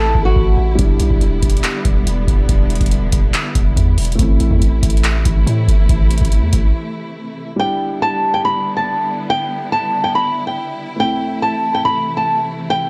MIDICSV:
0, 0, Header, 1, 6, 480
1, 0, Start_track
1, 0, Key_signature, 1, "minor"
1, 0, Tempo, 425532
1, 887, Time_signature, 4, 2, 24, 8
1, 14547, End_track
2, 0, Start_track
2, 0, Title_t, "Nylon-string guitar"
2, 0, Program_c, 0, 24
2, 0, Note_on_c, 0, 69, 79
2, 263, Note_off_c, 0, 69, 0
2, 283, Note_on_c, 0, 66, 69
2, 849, Note_off_c, 0, 66, 0
2, 8567, Note_on_c, 0, 79, 107
2, 9018, Note_off_c, 0, 79, 0
2, 9048, Note_on_c, 0, 81, 97
2, 9386, Note_off_c, 0, 81, 0
2, 9405, Note_on_c, 0, 79, 80
2, 9504, Note_off_c, 0, 79, 0
2, 9529, Note_on_c, 0, 83, 97
2, 9867, Note_off_c, 0, 83, 0
2, 9888, Note_on_c, 0, 81, 77
2, 10452, Note_off_c, 0, 81, 0
2, 10490, Note_on_c, 0, 79, 111
2, 10940, Note_off_c, 0, 79, 0
2, 10967, Note_on_c, 0, 81, 92
2, 11305, Note_off_c, 0, 81, 0
2, 11323, Note_on_c, 0, 79, 84
2, 11422, Note_off_c, 0, 79, 0
2, 11450, Note_on_c, 0, 83, 81
2, 11787, Note_off_c, 0, 83, 0
2, 11811, Note_on_c, 0, 79, 75
2, 12373, Note_off_c, 0, 79, 0
2, 12407, Note_on_c, 0, 79, 111
2, 12858, Note_off_c, 0, 79, 0
2, 12886, Note_on_c, 0, 81, 84
2, 13225, Note_off_c, 0, 81, 0
2, 13249, Note_on_c, 0, 79, 81
2, 13346, Note_off_c, 0, 79, 0
2, 13366, Note_on_c, 0, 83, 91
2, 13705, Note_off_c, 0, 83, 0
2, 13727, Note_on_c, 0, 81, 76
2, 14291, Note_off_c, 0, 81, 0
2, 14327, Note_on_c, 0, 79, 110
2, 14547, Note_off_c, 0, 79, 0
2, 14547, End_track
3, 0, Start_track
3, 0, Title_t, "Felt piano"
3, 0, Program_c, 1, 0
3, 0, Control_c, 1, 64, 127
3, 0, Note_on_c, 1, 57, 66
3, 0, Note_on_c, 1, 60, 64
3, 0, Note_on_c, 1, 64, 80
3, 821, Note_off_c, 1, 57, 0
3, 842, Note_off_c, 1, 60, 0
3, 847, Note_on_c, 1, 55, 73
3, 862, Note_off_c, 1, 64, 0
3, 889, Note_on_c, 1, 62, 64
3, 901, Control_c, 1, 64, 0
3, 929, Note_on_c, 1, 64, 73
3, 1089, Control_c, 1, 64, 127
3, 4662, Note_off_c, 1, 55, 0
3, 4683, Note_off_c, 1, 62, 0
3, 4685, Note_on_c, 1, 57, 65
3, 4703, Note_off_c, 1, 64, 0
3, 4726, Note_on_c, 1, 60, 61
3, 4742, Control_c, 1, 64, 0
3, 4767, Note_on_c, 1, 64, 79
3, 4959, Control_c, 1, 64, 127
3, 8501, Note_off_c, 1, 57, 0
3, 8522, Note_off_c, 1, 60, 0
3, 8529, Note_on_c, 1, 55, 76
3, 8542, Note_off_c, 1, 64, 0
3, 8569, Note_on_c, 1, 62, 66
3, 8582, Control_c, 1, 64, 0
3, 8611, Note_on_c, 1, 64, 73
3, 8755, Control_c, 1, 64, 127
3, 12343, Note_off_c, 1, 55, 0
3, 12363, Note_off_c, 1, 62, 0
3, 12366, Note_on_c, 1, 57, 69
3, 12384, Note_off_c, 1, 64, 0
3, 12407, Note_on_c, 1, 60, 65
3, 12420, Control_c, 1, 64, 0
3, 12448, Note_on_c, 1, 64, 82
3, 12615, Control_c, 1, 64, 127
3, 14547, Note_off_c, 1, 57, 0
3, 14547, Note_off_c, 1, 60, 0
3, 14547, Note_off_c, 1, 64, 0
3, 14547, End_track
4, 0, Start_track
4, 0, Title_t, "String section"
4, 0, Program_c, 2, 48
4, 0, Note_on_c, 2, 48, 82
4, 0, Note_on_c, 2, 52, 74
4, 0, Note_on_c, 2, 57, 75
4, 0, Note_on_c, 2, 64, 87
4, 848, Note_off_c, 2, 52, 0
4, 849, Note_off_c, 2, 48, 0
4, 849, Note_off_c, 2, 57, 0
4, 887, Note_on_c, 2, 55, 76
4, 887, Note_on_c, 2, 59, 72
4, 888, Note_on_c, 2, 50, 82
4, 4682, Note_off_c, 2, 64, 0
4, 4689, Note_off_c, 2, 50, 0
4, 4689, Note_off_c, 2, 55, 0
4, 4689, Note_off_c, 2, 59, 0
4, 4726, Note_on_c, 2, 52, 73
4, 4726, Note_on_c, 2, 57, 76
4, 4727, Note_on_c, 2, 48, 77
4, 4727, Note_on_c, 2, 64, 90
4, 8528, Note_off_c, 2, 52, 0
4, 8528, Note_off_c, 2, 57, 0
4, 8528, Note_off_c, 2, 64, 0
4, 8529, Note_off_c, 2, 48, 0
4, 8568, Note_on_c, 2, 50, 82
4, 8568, Note_on_c, 2, 55, 76
4, 8568, Note_on_c, 2, 59, 75
4, 8568, Note_on_c, 2, 64, 94
4, 12369, Note_off_c, 2, 50, 0
4, 12369, Note_off_c, 2, 55, 0
4, 12369, Note_off_c, 2, 59, 0
4, 12406, Note_on_c, 2, 48, 81
4, 12406, Note_on_c, 2, 52, 76
4, 12406, Note_on_c, 2, 57, 77
4, 14547, Note_off_c, 2, 48, 0
4, 14547, Note_off_c, 2, 52, 0
4, 14547, Note_off_c, 2, 57, 0
4, 14547, Note_off_c, 2, 64, 0
4, 14547, End_track
5, 0, Start_track
5, 0, Title_t, "808-style bass"
5, 0, Program_c, 3, 38
5, 0, Note_on_c, 3, 33, 106
5, 148, Note_off_c, 3, 33, 0
5, 168, Note_on_c, 3, 33, 104
5, 398, Note_off_c, 3, 33, 0
5, 407, Note_on_c, 3, 33, 112
5, 638, Note_off_c, 3, 33, 0
5, 648, Note_on_c, 3, 33, 107
5, 878, Note_off_c, 3, 33, 0
5, 888, Note_on_c, 3, 28, 112
5, 1118, Note_off_c, 3, 28, 0
5, 1128, Note_on_c, 3, 35, 108
5, 1243, Note_off_c, 3, 35, 0
5, 1247, Note_on_c, 3, 28, 104
5, 1362, Note_off_c, 3, 28, 0
5, 1367, Note_on_c, 3, 28, 99
5, 1598, Note_off_c, 3, 28, 0
5, 1606, Note_on_c, 3, 28, 102
5, 1837, Note_off_c, 3, 28, 0
5, 2087, Note_on_c, 3, 28, 102
5, 2317, Note_off_c, 3, 28, 0
5, 2328, Note_on_c, 3, 28, 104
5, 2558, Note_off_c, 3, 28, 0
5, 2566, Note_on_c, 3, 28, 108
5, 2797, Note_off_c, 3, 28, 0
5, 2807, Note_on_c, 3, 28, 111
5, 3153, Note_off_c, 3, 28, 0
5, 3167, Note_on_c, 3, 28, 104
5, 3512, Note_off_c, 3, 28, 0
5, 3527, Note_on_c, 3, 28, 105
5, 3757, Note_off_c, 3, 28, 0
5, 4007, Note_on_c, 3, 28, 108
5, 4237, Note_off_c, 3, 28, 0
5, 4246, Note_on_c, 3, 40, 108
5, 4477, Note_off_c, 3, 40, 0
5, 4487, Note_on_c, 3, 28, 104
5, 4717, Note_off_c, 3, 28, 0
5, 4727, Note_on_c, 3, 33, 113
5, 4957, Note_off_c, 3, 33, 0
5, 4967, Note_on_c, 3, 33, 107
5, 5082, Note_off_c, 3, 33, 0
5, 5087, Note_on_c, 3, 40, 105
5, 5199, Note_off_c, 3, 40, 0
5, 5206, Note_on_c, 3, 33, 102
5, 5437, Note_off_c, 3, 33, 0
5, 5446, Note_on_c, 3, 33, 102
5, 5907, Note_off_c, 3, 33, 0
5, 5927, Note_on_c, 3, 33, 104
5, 6157, Note_off_c, 3, 33, 0
5, 6166, Note_on_c, 3, 45, 108
5, 6397, Note_off_c, 3, 45, 0
5, 6406, Note_on_c, 3, 31, 104
5, 6637, Note_off_c, 3, 31, 0
5, 6647, Note_on_c, 3, 33, 113
5, 6993, Note_off_c, 3, 33, 0
5, 7006, Note_on_c, 3, 33, 105
5, 7246, Note_on_c, 3, 40, 99
5, 7263, Note_off_c, 3, 33, 0
5, 7361, Note_off_c, 3, 40, 0
5, 7366, Note_on_c, 3, 33, 102
5, 7597, Note_off_c, 3, 33, 0
5, 14547, End_track
6, 0, Start_track
6, 0, Title_t, "Drums"
6, 168, Note_on_c, 9, 36, 92
6, 280, Note_off_c, 9, 36, 0
6, 407, Note_on_c, 9, 36, 98
6, 520, Note_off_c, 9, 36, 0
6, 888, Note_on_c, 9, 36, 117
6, 888, Note_on_c, 9, 42, 90
6, 1000, Note_off_c, 9, 36, 0
6, 1001, Note_off_c, 9, 42, 0
6, 1123, Note_on_c, 9, 42, 69
6, 1236, Note_off_c, 9, 42, 0
6, 1247, Note_on_c, 9, 36, 91
6, 1360, Note_off_c, 9, 36, 0
6, 1367, Note_on_c, 9, 42, 70
6, 1480, Note_off_c, 9, 42, 0
6, 1607, Note_on_c, 9, 36, 95
6, 1608, Note_on_c, 9, 42, 80
6, 1687, Note_off_c, 9, 42, 0
6, 1687, Note_on_c, 9, 42, 65
6, 1720, Note_off_c, 9, 36, 0
6, 1768, Note_off_c, 9, 42, 0
6, 1768, Note_on_c, 9, 42, 49
6, 1846, Note_off_c, 9, 42, 0
6, 1846, Note_on_c, 9, 42, 79
6, 1847, Note_on_c, 9, 39, 106
6, 1958, Note_off_c, 9, 42, 0
6, 1960, Note_off_c, 9, 39, 0
6, 2087, Note_on_c, 9, 36, 92
6, 2087, Note_on_c, 9, 42, 83
6, 2199, Note_off_c, 9, 42, 0
6, 2200, Note_off_c, 9, 36, 0
6, 2334, Note_on_c, 9, 42, 78
6, 2447, Note_off_c, 9, 42, 0
6, 2566, Note_on_c, 9, 36, 102
6, 2574, Note_on_c, 9, 42, 71
6, 2679, Note_off_c, 9, 36, 0
6, 2687, Note_off_c, 9, 42, 0
6, 2807, Note_on_c, 9, 36, 118
6, 2808, Note_on_c, 9, 42, 87
6, 2920, Note_off_c, 9, 36, 0
6, 2921, Note_off_c, 9, 42, 0
6, 3047, Note_on_c, 9, 42, 54
6, 3107, Note_off_c, 9, 42, 0
6, 3107, Note_on_c, 9, 42, 54
6, 3167, Note_off_c, 9, 42, 0
6, 3167, Note_on_c, 9, 36, 90
6, 3167, Note_on_c, 9, 42, 54
6, 3227, Note_off_c, 9, 42, 0
6, 3227, Note_on_c, 9, 42, 56
6, 3280, Note_off_c, 9, 36, 0
6, 3287, Note_off_c, 9, 42, 0
6, 3287, Note_on_c, 9, 42, 75
6, 3400, Note_off_c, 9, 42, 0
6, 3524, Note_on_c, 9, 42, 89
6, 3527, Note_on_c, 9, 36, 97
6, 3636, Note_off_c, 9, 42, 0
6, 3639, Note_off_c, 9, 36, 0
6, 3765, Note_on_c, 9, 42, 77
6, 3767, Note_on_c, 9, 39, 108
6, 3878, Note_off_c, 9, 42, 0
6, 3880, Note_off_c, 9, 39, 0
6, 4007, Note_on_c, 9, 36, 95
6, 4007, Note_on_c, 9, 42, 79
6, 4120, Note_off_c, 9, 36, 0
6, 4120, Note_off_c, 9, 42, 0
6, 4246, Note_on_c, 9, 36, 101
6, 4254, Note_on_c, 9, 42, 78
6, 4359, Note_off_c, 9, 36, 0
6, 4367, Note_off_c, 9, 42, 0
6, 4488, Note_on_c, 9, 42, 62
6, 4494, Note_on_c, 9, 46, 78
6, 4567, Note_off_c, 9, 42, 0
6, 4567, Note_on_c, 9, 42, 61
6, 4607, Note_off_c, 9, 46, 0
6, 4648, Note_off_c, 9, 42, 0
6, 4648, Note_on_c, 9, 42, 60
6, 4727, Note_on_c, 9, 36, 115
6, 4728, Note_off_c, 9, 42, 0
6, 4728, Note_on_c, 9, 42, 92
6, 4840, Note_off_c, 9, 36, 0
6, 4841, Note_off_c, 9, 42, 0
6, 4964, Note_on_c, 9, 42, 68
6, 5076, Note_off_c, 9, 42, 0
6, 5087, Note_on_c, 9, 36, 94
6, 5200, Note_off_c, 9, 36, 0
6, 5208, Note_on_c, 9, 42, 71
6, 5321, Note_off_c, 9, 42, 0
6, 5446, Note_on_c, 9, 36, 93
6, 5448, Note_on_c, 9, 42, 84
6, 5527, Note_off_c, 9, 42, 0
6, 5527, Note_on_c, 9, 42, 66
6, 5559, Note_off_c, 9, 36, 0
6, 5607, Note_off_c, 9, 42, 0
6, 5607, Note_on_c, 9, 42, 50
6, 5685, Note_off_c, 9, 42, 0
6, 5685, Note_on_c, 9, 42, 76
6, 5687, Note_on_c, 9, 39, 107
6, 5798, Note_off_c, 9, 42, 0
6, 5799, Note_off_c, 9, 39, 0
6, 5926, Note_on_c, 9, 42, 86
6, 5927, Note_on_c, 9, 36, 92
6, 6039, Note_off_c, 9, 42, 0
6, 6040, Note_off_c, 9, 36, 0
6, 6174, Note_on_c, 9, 42, 79
6, 6287, Note_off_c, 9, 42, 0
6, 6406, Note_on_c, 9, 36, 99
6, 6414, Note_on_c, 9, 42, 75
6, 6519, Note_off_c, 9, 36, 0
6, 6526, Note_off_c, 9, 42, 0
6, 6647, Note_on_c, 9, 36, 112
6, 6648, Note_on_c, 9, 42, 88
6, 6760, Note_off_c, 9, 36, 0
6, 6761, Note_off_c, 9, 42, 0
6, 6887, Note_on_c, 9, 42, 55
6, 6967, Note_off_c, 9, 42, 0
6, 6967, Note_on_c, 9, 42, 55
6, 7007, Note_on_c, 9, 36, 94
6, 7047, Note_off_c, 9, 42, 0
6, 7047, Note_on_c, 9, 42, 53
6, 7119, Note_off_c, 9, 36, 0
6, 7127, Note_off_c, 9, 42, 0
6, 7127, Note_on_c, 9, 42, 76
6, 7240, Note_off_c, 9, 42, 0
6, 7363, Note_on_c, 9, 42, 88
6, 7366, Note_on_c, 9, 36, 96
6, 7476, Note_off_c, 9, 42, 0
6, 7479, Note_off_c, 9, 36, 0
6, 14547, End_track
0, 0, End_of_file